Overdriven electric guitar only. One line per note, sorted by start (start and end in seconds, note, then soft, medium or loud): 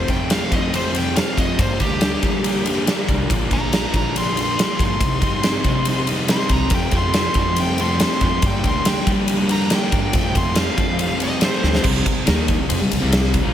0.00 0.11 C4 medium
0.09 0.30 F2 medium
0.09 0.31 C3 medium
0.09 0.31 F3 medium
0.09 0.32 A3 medium
0.09 0.32 C4 loud
0.31 0.51 F2 medium
0.31 0.53 C3 medium
0.31 0.52 F3 medium
0.31 0.53 A3 loud
0.31 0.54 C4 loud
0.52 0.73 F2 medium
0.52 0.74 C3 medium
0.52 0.74 F3 medium
0.52 0.75 A3 medium
0.52 0.75 C4 medium
0.74 0.93 F2 loud
0.74 0.93 C3 medium
0.74 0.94 F3 loud
0.74 0.95 A3 loud
0.74 0.95 C4 loud
0.94 1.15 F2 medium
0.94 1.15 C3 medium
0.94 1.16 F3 medium
0.94 1.17 A3 medium
0.94 1.18 C4 medium
1.16 1.36 F2 medium
1.16 1.36 C3 medium
1.16 1.37 F3 medium
1.16 1.37 A3 medium
1.16 1.38 C4 loud
1.38 1.57 F2 medium
1.38 1.58 C3 medium
1.38 1.58 F3 medium
1.38 1.58 A3 medium
1.38 1.58 C4 medium
1.59 1.79 G2 medium
1.59 1.79 D3 medium
1.59 1.79 G3 loud
1.59 1.81 A#3 loud
1.59 1.81 D4 loud
1.80 2.00 G2 loud
1.80 2.01 D3 loud
1.80 2.01 G3 medium
1.80 2.02 A#3 loud
1.80 2.03 D4 medium
2.01 2.21 G2 medium
2.01 2.22 D3 medium
2.01 2.23 G3 medium
2.01 2.25 A#3 medium
2.01 2.25 D4 medium
2.22 2.42 G2 medium
2.22 2.44 D3 medium
2.22 2.44 G3 medium
2.22 2.44 A#3 medium
2.22 2.45 D4 medium
2.44 2.64 G2 medium
2.44 2.65 D3 medium
2.44 2.66 G3 loud
2.44 2.66 A#3 loud
2.44 2.67 D4 loud
2.66 2.86 G2 medium
2.66 2.87 D3 medium
2.66 2.87 G3 medium
2.66 2.87 A#3 medium
2.66 2.88 D4 medium
2.87 3.06 G2 medium
2.87 3.07 D3 medium
2.87 3.08 G3 medium
2.87 3.08 A#3 medium
2.87 3.08 D4 loud
3.08 3.28 G2 medium
3.08 3.28 D3 medium
3.08 3.29 G3 medium
3.08 3.29 A#3 medium
3.08 3.29 D4 loud
3.30 3.49 A#2 loud
3.30 3.49 D3 loud
3.30 3.50 F3 loud
3.30 3.51 A#3 medium
3.30 3.52 D4 loud
3.50 3.70 A#2 medium
3.50 3.71 D3 loud
3.50 3.72 F3 loud
3.50 3.72 A#3 medium
3.50 3.72 D4 loud
3.72 3.92 A#2 medium
3.72 3.93 D3 medium
3.72 3.94 F3 medium
3.72 3.94 A#3 medium
3.72 3.95 D4 medium
3.93 4.14 A#2 medium
3.93 4.15 D3 medium
3.93 4.15 F3 medium
3.93 4.16 A#3 medium
3.93 4.17 D4 loud
4.15 4.35 A#2 medium
4.15 4.35 D3 medium
4.15 4.36 F3 loud
4.15 4.37 A#3 medium
4.15 4.37 D4 loud
4.36 4.56 A#2 medium
4.36 4.57 D3 medium
4.36 4.57 F3 medium
4.36 4.58 A#3 medium
4.36 4.59 D4 medium
4.58 4.79 A#2 medium
4.58 4.78 D3 medium
4.58 4.80 F3 medium
4.58 4.79 A#3 medium
4.58 4.81 D4 medium
4.80 5.00 A#2 medium
4.80 5.00 D3 medium
4.80 5.00 F3 medium
4.80 5.00 A#3 loud
4.80 5.01 D4 medium
5.02 5.20 C3 medium
5.02 5.21 G3 medium
5.02 5.23 C4 loud
5.02 5.22 D#4 medium
5.22 5.43 C3 medium
5.22 5.44 G3 medium
5.22 5.45 C4 medium
5.22 5.45 D#4 loud
5.44 5.64 C3 medium
5.44 5.65 G3 medium
5.44 5.66 C4 medium
5.44 5.66 D#4 medium
5.65 5.85 C3 medium
5.65 5.86 G3 medium
5.65 5.86 C4 medium
5.65 5.87 D#4 medium
5.87 6.07 C3 medium
5.87 6.08 G3 loud
5.87 6.08 C4 loud
5.87 6.09 D#4 loud
6.08 6.28 C3 medium
6.08 6.30 G3 medium
6.08 6.30 C4 medium
6.08 6.31 D#4 medium
6.30 6.49 C3 medium
6.30 6.49 G3 medium
6.30 6.51 C4 medium
6.30 6.51 D#4 loud
6.51 6.70 C3 medium
6.51 6.70 G3 medium
6.51 6.71 C4 medium
6.51 6.71 D#4 medium
6.71 6.91 F2 medium
6.71 6.92 C3 medium
6.71 6.92 F3 loud
6.71 6.93 A3 loud
6.71 6.93 C4 loud
6.93 7.14 F2 medium
6.93 7.15 C3 medium
6.93 7.16 F3 medium
6.93 7.16 A3 medium
6.93 7.16 C4 medium
7.15 7.35 F2 medium
7.15 7.36 C3 medium
7.15 7.36 F3 medium
7.15 7.37 A3 loud
7.15 7.37 C4 medium
7.36 7.58 F2 medium
7.36 7.58 C3 medium
7.36 7.59 F3 medium
7.36 7.59 A3 medium
7.36 7.59 C4 loud
7.59 7.78 F2 medium
7.59 7.79 C3 medium
7.59 7.80 F3 loud
7.59 7.80 A3 loud
7.59 7.81 C4 loud
7.80 8.00 F2 medium
7.80 8.01 C3 medium
7.80 8.01 F3 medium
7.80 8.01 A3 medium
7.80 8.02 C4 medium
8.01 8.21 F2 medium
8.01 8.22 C3 loud
8.01 8.22 F3 loud
8.01 8.23 A3 medium
8.01 8.23 C4 loud
8.22 8.42 F2 medium
8.22 8.42 C3 medium
8.22 8.42 F3 medium
8.22 8.43 A3 medium
8.22 8.43 C4 medium
8.43 8.63 G2 loud
8.43 8.63 D3 medium
8.43 8.64 G3 loud
8.43 8.65 A#3 loud
8.43 8.65 D4 loud
8.64 8.85 G2 loud
8.64 8.86 D3 medium
8.64 8.86 G3 loud
8.64 8.87 A#3 loud
8.64 8.87 D4 loud
8.86 9.05 G2 medium
8.86 9.06 D3 loud
8.86 9.06 G3 loud
8.86 9.06 A#3 medium
8.86 9.07 D4 loud
9.06 9.28 G2 medium
9.06 9.28 D3 medium
9.06 9.28 G3 medium
9.06 9.29 A#3 loud
9.06 9.29 D4 medium
9.29 9.48 G2 loud
9.29 9.48 D3 medium
9.29 9.49 G3 medium
9.29 9.49 A#3 loud
9.29 9.49 D4 loud
9.49 9.69 G2 medium
9.49 9.69 D3 medium
9.49 9.70 G3 medium
9.49 9.71 A#3 medium
9.49 9.71 D4 medium
9.70 9.90 G2 medium
9.70 9.91 D3 medium
9.70 9.91 G3 medium
9.70 9.92 A#3 medium
9.70 9.92 D4 medium
9.91 10.12 G2 medium
9.91 10.12 D3 medium
9.91 10.12 G3 medium
9.91 10.13 A#3 medium
9.91 10.13 D4 loud
10.12 10.33 F2 medium
10.12 10.34 C3 loud
10.12 10.35 F3 loud
10.12 10.35 A3 loud
10.12 10.36 C4 loud
10.34 10.55 F2 medium
10.34 10.56 C3 medium
10.34 10.56 F3 loud
10.34 10.57 A3 loud
10.34 10.58 C4 loud
10.57 10.75 F2 medium
10.57 10.76 C3 loud
10.57 10.77 F3 medium
10.57 10.77 A3 loud
10.57 10.78 C4 medium
10.77 10.97 F2 medium
10.77 10.98 C3 medium
10.77 10.99 F3 loud
10.77 10.99 A3 medium
10.77 10.99 C4 loud
10.98 11.19 F2 medium
10.98 11.20 C3 medium
10.98 11.21 F3 loud
10.98 11.21 A3 loud
10.98 11.21 C4 loud
11.20 11.41 F2 medium
11.20 11.41 C3 medium
11.20 11.42 F3 medium
11.20 11.42 A3 medium
11.20 11.42 C4 medium
11.42 11.61 F2 medium
11.42 11.62 C3 medium
11.42 11.62 F3 medium
11.42 11.63 A3 medium
11.42 11.63 C4 loud
11.62 11.83 F2 medium
11.62 11.82 C3 medium
11.62 11.84 F3 medium
11.62 11.84 A3 medium
11.62 11.84 C4 loud
11.83 12.04 C3 loud
11.83 12.05 G3 loud
11.83 12.06 C4 loud
12.05 12.23 C3 medium
12.05 12.23 G3 medium
12.25 12.58 D#3 medium
12.25 12.58 A#3 loud
12.25 12.58 D#4 loud
12.59 12.68 C3 medium
12.59 12.69 G3 medium
12.69 12.80 F3 medium
12.69 12.80 C4 loud
12.80 12.90 C3 medium
12.80 12.90 G3 medium
12.91 12.99 C3 medium
12.91 13.01 G3 medium
13.01 13.42 C3 medium
13.01 13.43 G3 medium
13.01 13.43 C4 medium
13.42 13.54 A#2 medium
13.42 13.54 F3 medium
13.42 13.54 A#3 medium